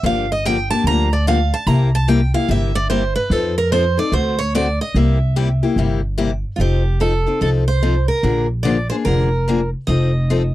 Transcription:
0.03 upright bass G1, steel-string acoustic guitar D3 F3 A#3 D4 G4 F5
0.32 steel-string acoustic guitar D#5
0.45 steel-string acoustic guitar D3 F3 A#3 D4 G4 G5
0.70 steel-string acoustic guitar A#3 D4 G4 A5
0.84 upright bass D2, steel-string acoustic guitar D3 F3 A#3 D4 G4 A#5
1.13 steel-string acoustic guitar D5
1.27 steel-string acoustic guitar D3 F3 A#3 D4 G4 F5
1.54 steel-string acoustic guitar A5
1.67 upright bass C2, steel-string acoustic guitar C3 G3 A#3 E4 G4 A#5
1.95 steel-string acoustic guitar A5
2.08 steel-string acoustic guitar C3 G3 A#3 E4 G4 G5
2.34 steel-string acoustic guitar A#3 E4 G4 F5
2.48 upright bass G1, steel-string acoustic guitar C3 G3 A#3 E4 G4 E5
2.75 steel-string acoustic guitar D5
2.90 steel-string acoustic guitar C3 G3 A#3 E4 G4 C5
3.16 steel-string acoustic guitar B4
3.30 upright bass F2, steel-string acoustic guitar F3 C4 D#4 A4
3.58 steel-string acoustic guitar A#4
3.72 steel-string acoustic guitar F3 C4 D#4 A4 C5
3.97 steel-string acoustic guitar C4 D#4 A4 D5
4.12 upright bass D2, steel-string acoustic guitar D3 A3 C4 F#4 A4 C5
4.39 steel-string acoustic guitar C#5
4.55 steel-string acoustic guitar D3 A3 C4 F#4 A4 D5
4.81 steel-string acoustic guitar D#5
4.95 upright bass C2, steel-string acoustic guitar C3 G3 A#3 E4 G4 E5
5.36 steel-string acoustic guitar C3 G3 A#3 E4 G4
5.63 steel-string acoustic guitar A#3 E4 G4
5.76 upright bass G1, steel-string acoustic guitar C3 G3 A#3 E4 G4
6.18 steel-string acoustic guitar C3 G3 A#3 E4 G4
6.56 upright bass F1, steel-string acoustic guitar F3 C4 F4
6.60 steel-string acoustic guitar D#4 G4 A4
7.00 steel-string acoustic guitar F3 C4 D#4 A4
7.27 steel-string acoustic guitar C4 D#4 A4
7.41 upright bass C2, steel-string acoustic guitar F3 C4 D#4 A4
7.68 steel-string acoustic guitar C5
7.83 steel-string acoustic guitar F3 C4 D#4 A4
8.08 steel-string acoustic guitar A#4
8.23 upright bass A#1, steel-string acoustic guitar D3 F3 A#3 D4 G#4
8.63 steel-string acoustic guitar D3 F3 A#3 D4 G#4 D5
8.90 steel-string acoustic guitar A#3 D4 G#4 C5
9.05 upright bass F1, steel-string acoustic guitar D3 F3 A#3 D4 G#4 A#4
9.48 steel-string acoustic guitar D3 F3 A#3 D4 G#4
9.87 upright bass F1, steel-string acoustic guitar F3 C4 D#4 A4 D#5
10.30 steel-string acoustic guitar F3 C4 D#4 A4

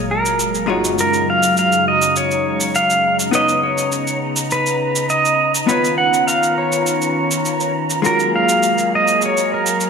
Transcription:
Already playing: analog synth pad A#2 F#3 G#3 F5, hollow-body jazz guitar G#3 F4 F#4 A#4, synth texture A#5, sub drop
0.11 pedal steel guitar A#4
0.25 shaker
0.39 shaker
0.55 shaker
0.66 hollow-body jazz guitar F#2 G#3 D#4 F4 F#4 C#5, analog synth pad F#2 C#3 D#4
0.84 shaker
0.98 pedal steel guitar A#4, shaker
1.13 shaker
1.30 pedal steel guitar F5
1.43 shaker
1.57 pedal steel guitar F5, shaker
1.72 shaker
1.88 pedal steel guitar D#5
2.02 shaker
2.16 pedal steel guitar C#5, shaker
2.31 shaker
2.60 shaker
2.75 pedal steel guitar F5, shaker
2.90 shaker
3.19 shaker
3.31 hollow-body jazz guitar B3 D#4 B4 C#5, analog synth pad B3 A#5, pedal steel guitar D#5, shaker
3.48 shaker
3.63 pedal steel guitar C#5
3.78 shaker
3.92 shaker
4.07 shaker
4.36 shaker
4.51 pedal steel guitar B4, shaker
4.66 shaker
4.96 shaker
5.09 pedal steel guitar D#5, shaker
5.25 shaker
5.55 shaker
5.67 analog synth pad D#3 C#4 F4 B4, hollow-body jazz guitar B3 D#4 F4 C#5, pedal steel guitar B4, shaker
5.84 shaker
5.98 pedal steel guitar F#5
6.14 shaker
6.27 pedal steel guitar F5, shaker
6.43 shaker
6.58 pedal steel guitar C#5
6.72 shaker
6.86 shaker
7.02 shaker
7.31 shaker
7.45 shaker
7.60 shaker
7.90 shaker
8.02 analog synth pad F#3 A#3 G#4 F5, hollow-body jazz guitar G#3 F4 F#4 A#4, shaker
8.06 pedal steel guitar A#4
8.19 shaker
8.36 pedal steel guitar F5
8.49 shaker
8.63 shaker
8.78 shaker
8.95 pedal steel guitar D#5
9.08 shaker
9.21 shaker
9.26 pedal steel guitar C#5
9.37 shaker
9.54 pedal steel guitar A#4
9.66 shaker
9.80 shaker

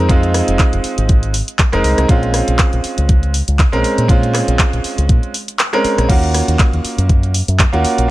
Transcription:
0.00 fingered electric bass F2
0.09 grand piano G#3 C4 D#4 F4, kick, closed hi-hat
0.23 closed hi-hat
0.34 cross-stick, open hi-hat
0.48 fingered electric bass F1, closed hi-hat
0.59 kick, clap, closed hi-hat
0.73 fingered electric bass F1, closed hi-hat
0.84 muted fingered electric bass stroke, open hi-hat
0.98 fingered electric bass G#1, closed hi-hat
1.09 kick, closed hi-hat
1.23 closed hi-hat
1.34 open hi-hat
1.48 closed hi-hat
1.59 kick, clap, closed hi-hat
1.72 fingered electric bass F1, grand piano G#3 C4 D#4 A#4, cross-stick, closed hi-hat
1.84 fingered electric bass C2, open hi-hat
1.98 fingered electric bass C2, cross-stick, closed hi-hat
2.08 fingered electric bass A#1, grand piano G#3 C4 C#4 F4, kick, closed hi-hat
2.23 closed hi-hat
2.34 cross-stick, open hi-hat
2.48 fingered electric bass A#1, closed hi-hat
2.59 kick, clap, closed hi-hat
2.73 fingered electric bass A#1, closed hi-hat
2.84 open hi-hat
2.98 fingered electric bass C#2, closed hi-hat
3.09 kick, closed hi-hat
3.23 closed hi-hat
3.34 open hi-hat
3.48 fingered electric bass C#2, closed hi-hat
3.59 kick, clap, closed hi-hat
3.72 fingered electric bass A#1, grand piano G#3 C4 C#4 A#4, closed hi-hat
3.84 muted fingered electric bass stroke, open hi-hat
3.98 fingered electric bass A#2, closed hi-hat
4.08 grand piano G#3 C4 C#4 F4, kick, closed hi-hat
4.23 closed hi-hat
4.34 cross-stick, clap, open hi-hat
4.48 fingered electric bass A#1, closed hi-hat
4.59 kick, clap, closed hi-hat
4.73 fingered electric bass A#1, closed hi-hat
4.84 open hi-hat
4.98 fingered electric bass C#2, closed hi-hat
5.09 fingered electric bass A#2, kick, closed hi-hat
5.23 closed hi-hat
5.34 open hi-hat
5.48 closed hi-hat
5.59 clap, closed hi-hat
5.73 grand piano G#3 C4 C#4 A#4, cross-stick, closed hi-hat
5.84 muted fingered electric bass stroke, open hi-hat
5.98 fingered electric bass A#1, cross-stick, closed hi-hat
6.09 fingered electric bass D#2, grand piano A#3 C#4 F4 F#4, kick, closed hi-hat, crash
6.23 closed hi-hat
6.34 cross-stick, open hi-hat
6.48 fingered electric bass D#2, closed hi-hat
6.59 kick, clap, closed hi-hat
6.73 fingered electric bass D#2, closed hi-hat
6.85 muted fingered electric bass stroke, open hi-hat
6.98 fingered electric bass F#2, closed hi-hat
7.09 kick, closed hi-hat
7.23 closed hi-hat
7.34 open hi-hat
7.48 fingered electric bass F#2, closed hi-hat
7.59 kick, clap, closed hi-hat
7.73 fingered electric bass D#2, grand piano A#3 C#4 F4 F#4, closed hi-hat
7.84 muted fingered electric bass stroke, open hi-hat
7.98 fingered electric bass A#1, closed hi-hat

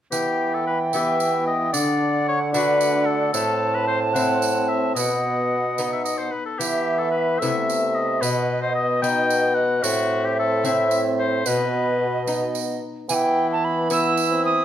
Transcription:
0.11 lute E3, bassoon E3 B3, oboe G4, recorder G5, tambourine
0.54 oboe A4
0.67 oboe B4
0.93 bassoon B3, lute B3 G4, oboe E5, tambourine
1.20 tambourine
1.47 oboe D#5
1.73 lute D3, bassoon D3 D4, oboe D5, recorder F#5, tambourine
2.28 oboe C#5
2.53 lute A3 D4 F#4, bassoon D4, oboe B4, recorder F#5, tambourine
2.81 tambourine
3.06 oboe A4
3.32 bassoon A2 C4, lute A2, oboe A4, recorder A5, tambourine
3.75 oboe B4
3.88 oboe C5
4.14 lute A3 C4 E4, oboe F#5, tambourine
4.42 tambourine
4.69 oboe E5
4.95 lute B2, bassoon B2 B3, oboe D#5, recorder F#5, tambourine
5.78 lute B3 D#4, tambourine
5.93 oboe E5
6.05 oboe D#5, tambourine
6.18 oboe C5
6.31 oboe B4
6.46 oboe A4
6.58 lute E3, bassoon E3 B3, oboe G4, recorder E5, tambourine
6.99 oboe A4
7.11 oboe B4
7.39 bassoon C3 A3, lute C3 B3 E4, oboe E5, recorder E5, tambourine
7.70 tambourine
7.95 oboe D#5
8.21 lute B2, bassoon B2 B3, oboe B4, recorder D#5, tambourine
8.62 oboe C5
8.75 oboe D#5
9.02 bassoon B3, lute B3 D#4, oboe G5, tambourine
9.30 tambourine
9.55 oboe F#5
9.83 lute A2, bassoon A2 C4, oboe F#4, recorder E5, tambourine
10.25 oboe G4
10.39 oboe A4
10.64 lute A3 C4 E4, oboe E5, tambourine
10.91 tambourine
11.19 oboe C5
11.46 bassoon B2 B3, lute B2, oboe B4, recorder D#5, tambourine
12.27 lute B3 D#4, tambourine
12.55 tambourine
13.09 lute E3, bassoon E3 B3, oboe E4, recorder G#5, tambourine
13.14 recorder G5
13.52 recorder A5
13.64 recorder B5
13.90 bassoon B3, lute B3 E4, oboe E4, recorder E6, tambourine
14.17 tambourine
14.32 bassoon C4
14.45 recorder D#6

